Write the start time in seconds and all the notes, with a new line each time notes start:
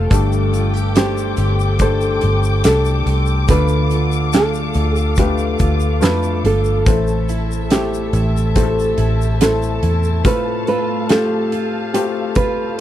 Already playing: G3 A3 C4 F4 G4 A4
0.10 G1 G2 A3 D4 G4 A4 G5 D6, kick, closed hi-hat, shaker
0.32 shaker
0.53 F4, closed hi-hat, shaker
0.74 G4, shaker
0.95 A3 D4 G4 A4 C5, snare, closed hi-hat, shaker
1.18 shaker
1.37 G1 G4, closed hi-hat, shaker
1.60 shaker
1.79 A3 D4 G4 A4 C5, kick, closed hi-hat, shaker
2.01 shaker
2.21 G1 G4, closed hi-hat
2.44 shaker
2.64 C2 A3 D4 G4 A4, snare, closed hi-hat, shaker
2.85 shaker
3.06 C2 G4, closed hi-hat
3.26 shaker
3.48 D2 D3 A3 D4 F4 A4 B4 F5, kick, closed hi-hat, shaker
3.68 shaker
3.90 F4, closed hi-hat, shaker
4.12 shaker
4.33 A3 D4 F4 A4, snare, closed hi-hat, shaker
4.54 shaker
4.74 D2 F4, closed hi-hat, shaker
4.96 G4, shaker
5.16 A3 D4 F4 G4 A4 B4, kick, closed hi-hat, shaker
5.38 shaker
5.59 D2 F4, kick, closed hi-hat, shaker
5.80 shaker
6.00 F2 A3 D4 F4 A4 B4, snare, closed hi-hat, shaker
6.23 shaker
6.44 G1 F4 A4, closed hi-hat
6.64 shaker
6.86 A1 A2 A3 C4 E4 A4 E5 A5, kick, closed hi-hat, shaker
7.07 shaker
7.29 E4, closed hi-hat, shaker
7.52 shaker
7.70 A3 C4 E4 G4 A4, snare, closed hi-hat, shaker
7.94 shaker
8.13 A1 E4, closed hi-hat, shaker
8.37 shaker
8.55 A3 C4 E4 G4 A4, kick, closed hi-hat, shaker
8.63 A4
8.79 shaker
8.98 A1 E4, closed hi-hat
9.22 shaker
9.41 A3 C4 E4 A4, snare, closed hi-hat, shaker
9.63 shaker
9.83 E2 E4, closed hi-hat
10.03 shaker
10.23 A2 A3 C4 F4 A4 B4 F5, kick, closed hi-hat
10.67 F4 B4, closed hi-hat
11.09 A3 C4 F4 G4 A4, snare, closed hi-hat
11.52 F4, closed hi-hat
11.94 A3 C4 F4 G4 A4, closed hi-hat
12.35 F4 B4, kick, closed hi-hat